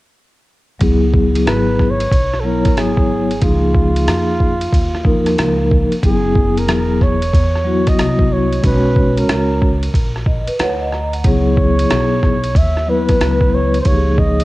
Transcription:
0.79 C#2 F#3 B3 E4 G#4, kick, ride
1.14 kick
1.35 ride
1.46 G#1 B4, cross-stick, hi-hat pedal, ride
1.79 kick, cross-stick
1.91 C#5
2.00 ride
2.11 B1, kick, ride
2.34 cross-stick
2.40 F#3 B3 A4
2.44 E4 A#4 C#5
2.65 kick, cross-stick, ride
2.77 G#1 G#4, cross-stick, hi-hat pedal, ride
2.97 kick
3.31 ride
3.40 C#2 F3 A#3 D#4 F4 G#4, kick, ride
3.75 kick
3.96 ride
4.07 F2, cross-stick, hi-hat pedal, ride
4.40 kick
4.61 ride
4.73 D#2, kick, ride
4.95 cross-stick
5.03 F3 A#3 D#4 A#4, kick
5.26 cross-stick, ride
5.38 C#2, cross-stick, hi-hat pedal, ride
5.71 kick
5.91 muted upright bass stroke, ride
6.01 F#1 F#3 B3 E4 G#4, kick, ride
6.36 kick
6.57 A#4, ride
6.68 E1, cross-stick, hi-hat pedal, ride
7.01 C#5, kick, cross-stick
7.22 ride
7.33 E2, kick, ride
7.55 cross-stick
7.64 F#3 B3 E4 F#4
7.87 D#5, kick, cross-stick, ride
7.99 C2, cross-stick, hi-hat pedal, ride
8.19 kick
8.33 C#5
8.52 ride
8.62 B1 G#3 C#4 F#4 B4 C#5, kick, ride
8.96 kick
9.17 A#4, ride
9.29 C#2, cross-stick, hi-hat pedal, ride
9.62 kick
9.83 ride
9.94 A#1, kick, ride
10.16 cross-stick
10.26 D#5, kick
10.47 B4, muted upright bass stroke, ride
10.59 D2 C#5 F#5, cross-stick, hi-hat pedal, ride
10.80 D#5
10.92 A#5, cross-stick
11.13 F#5, ride
11.24 C#2 F#3 B3 E4 G#4 C#5, kick, ride
11.57 kick
11.79 ride
11.90 B1, cross-stick, hi-hat pedal, ride
12.23 kick, cross-stick
12.44 ride
12.55 D#2 E5, kick, ride
12.77 cross-stick
12.87 F#3 B3 E4 B4
13.09 kick, cross-stick, ride
13.21 C#2, cross-stick, hi-hat pedal, ride
13.41 kick
13.55 C#5
13.74 ride
13.81 F3 C5
13.85 C#2 A#3 D#4 G4 C#5, kick, ride
13.94 G#4
14.18 D#5, kick
14.40 ride

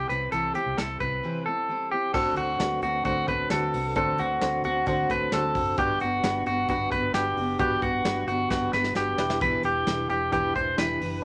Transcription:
0.08 C2 G3 C4 E4 B4 C5, closed hi-hat
0.32 C2 C3 E3 G3 C4 E4 A4 C5, closed hi-hat
0.54 G3 C4 E4 G4 C5, closed hi-hat
0.66 C2
0.77 C2 G3 C4 E4 A4 C5, snare, closed hi-hat
1.00 C2 G3 C4 E4 B4 C5, kick, closed hi-hat
1.23 C3 E3 G3 C4 E4 C5
1.46 G3 C4 E4 A4 C5
1.69 G3 C4 E4 C5
1.91 G3 C4 E4 G4 C5
2.14 D2 D3 C4 D4 F#4 A4 C5, kick, crash
2.36 D2 C4 F#4 A4, closed hi-hat
2.59 D2 D3 C4 D4 F#4 A4 B4, snare, closed hi-hat
2.82 D2 C4 F#4 A4, closed hi-hat
3.04 D2 D3 C4 D4 F#4 A4 C5, kick, closed hi-hat
3.27 D2 C4 F#4 A4 B4, kick, closed hi-hat
3.50 D2 D3 C4 D4 F#4 A4 B4, snare, closed hi-hat
3.73 C2 C4 F#4 A4, open hi-hat
3.96 D2 D3 C4 D4 F#4 A4 C5, kick, closed hi-hat
4.18 D2 C4 F#4 A4, closed hi-hat
4.41 D2 D3 C4 D4 F#4 A4 C5, snare, closed hi-hat
4.63 D2 C4 F#4 A4, closed hi-hat
4.86 D2 D3 C4 D4 F#4 A4 C5, kick, closed hi-hat
5.09 D2 C4 F#4 A4 B4, kick, closed hi-hat
5.32 D2 D3 C4 D4 F#4 A4 C5, snare, closed hi-hat
5.55 F#1 C4 F#4 A4, kick, open hi-hat
5.78 G1 G3 B3 D4 F#4 G4 B4, kick, closed hi-hat
6.00 G1 B3 D4 F#4, closed hi-hat
6.23 G1 G3 B3 D4 F#4 G4 B4, snare, closed hi-hat
6.46 G1 B3 D4 F#4, closed hi-hat
6.68 G1 G3 B3 D4 F#4 G4 B4, kick, closed hi-hat
6.92 G1 B3 D4 F#4 B4, kick, closed hi-hat
7.14 G1 G3 B3 D4 F#4 G4 B4, snare, closed hi-hat
7.37 F#1 B3 D4 F#4, open hi-hat
7.59 G1 G3 B3 D4 F#4 G4 B4, kick, closed hi-hat
7.82 G1 B3 D4 F#4, kick, closed hi-hat
8.04 G1 G3 B3 D4 F#4 G4 B4, snare, closed hi-hat
8.27 G1 B3 D4 F#4, closed hi-hat
8.50 G1 G3 B3 D4 F#4 G4 B4, kick, snare
8.73 G1 B3 D4 F#4 B4, snare
8.84 snare
8.95 G1 G3 B3 D4 F#4 G4 B4, snare
9.18 E1 E3 G3 D4 E4 G4 B4, snare
9.30 snare
9.41 E2 B2 E3 G3 D4 E4 B4, kick, closed hi-hat
9.63 E1 E3 G3 D4 E4 G4, closed hi-hat
9.86 E1 E3 G3 D4 E4 G4 B4, snare, closed hi-hat
10.09 E1 E3 G3 D4 E4 G4, closed hi-hat
10.32 E1 E2 B2 E3 G3 D4 E4 G4 B4, kick, closed hi-hat
10.55 E1 E3 G3 D4 E4 C5, kick, closed hi-hat
10.77 E1 E3 G3 D4 E4 G4 B4, snare, closed hi-hat
11.00 F#1 E3 G3 D4 E4, open hi-hat

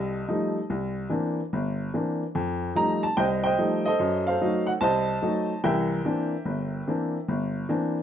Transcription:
Already playing: C2 G4 A4 D#5
0.28 F3 G3 A3 D#4
0.70 C2
1.09 E3 A#3 C4 D4
1.53 G1
1.94 E3 A#3 C4 D4
2.35 F2
2.75 F3 G3 A3 D#4 A#5
3.03 A5
3.17 C2 C5 D#5 G5
3.44 C5 D#5 G5
3.59 F3 G3 A3 D#4
3.85 A4 C5 D#5
3.99 F#2
4.27 A4 C5 F5
4.41 F#3 A3 D#4
4.67 F#5
4.81 C2 C5 D#5 A5
5.22 F#3 A3 D#4
5.64 C2 E3 A#4 E5 G5
6.05 E3 A#3 C4 D4
6.45 G1
6.87 E3 A#3 C4 D4
7.28 G1
7.69 E3 A#3 C4 D4

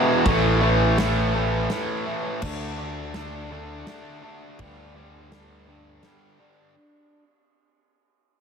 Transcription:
Already playing: E2 B2 E3
0.26 A1 A2 E3 A3, kick, ride
0.62 A2 E3 A3
0.98 A2 E3 A3, snare, ride
1.35 A2 E3 A3
1.70 A2 E3 A3, snare, ride
2.06 A2 E3 A3
2.42 D2 D3 A3 D4, kick, crash
2.79 D3 A3 D4
3.14 D3 A3 D4, snare, ride
3.50 D3 A3 D4
3.87 D3 A3 D4, snare, ride
4.23 D3 A3 D4
4.59 D2 G2 D3 G3, kick, ride
4.95 G2 D3 G3
5.32 G2 D3 G3, snare, ride
5.67 G2 D3 G3
6.03 G2 D3 G3, snare, ride
6.39 G2 D3 G3

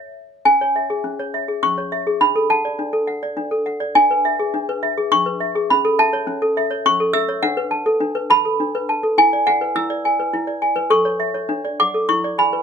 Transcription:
Already playing: C#5 E5
0.45 C#4 G#5
0.61 C#5
0.76 E5
0.90 G#4
1.04 C#4
1.19 C#5
1.34 E5
1.48 G#4
1.63 C#4 C#6
1.78 C#5
1.92 E5
2.07 G#4
2.21 D4 B5
2.36 A4
2.50 F#5 A5
2.65 D5
2.79 D4
2.93 A4
3.07 F#5
3.23 D5
3.37 D4
3.51 A4
3.66 F#5
3.80 D5
3.95 D4 G#5
4.11 B4
4.25 E5
4.39 G#4
4.54 D4
4.69 B4
4.83 E5
4.98 G#4
5.12 D4 C#6
5.26 B4
5.40 E5
5.55 G#4
5.70 C#4 B5
5.85 A4
5.99 E5 A5
6.13 C#5
6.27 C#4
6.42 A4
6.57 E5
6.71 C#5
6.86 C#4 C#6
7.00 A4
7.13 E5 E6
7.29 C#5
7.43 D4 F#5
7.57 B4
7.71 A5
7.86 A4
8.00 D4
8.15 B4
8.30 A5 B5
8.45 A4
8.60 D4
8.75 B4
8.89 A5
9.03 A4
9.18 E4 G#5
9.33 D5
9.47 F#5 G#5
9.61 B4
9.76 E4 E6
9.90 D5
10.05 G#5
10.19 B4
10.34 E4
10.47 D5
10.62 G#5
10.76 B4
10.90 A4 C#6
11.05 C#5
11.20 E5
11.34 C#5
11.49 D4
11.65 D5
11.80 F#5 D6
11.94 A4
12.09 E4 C#6
12.24 D5
12.38 G#5 B5
12.53 B4

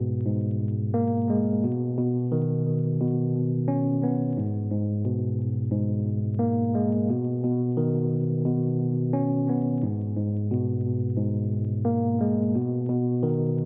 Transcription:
Already playing: G#2 B2
0.26 G#2
0.94 A#3
1.30 G#3
1.64 B2
1.98 B2
2.32 D#3
3.01 B2
3.68 C#4
4.03 B3
4.37 G#2
4.71 G#2
5.05 B2
5.71 G#2
6.39 A#3
6.75 G#3
7.10 B2
7.44 B2
7.77 D#3
8.46 B2
9.13 C#4
9.49 B3
9.83 G#2
10.17 G#2
10.51 B2
11.17 G#2
11.85 A#3
12.21 G#3
12.55 B2
12.90 B2
13.23 D#3

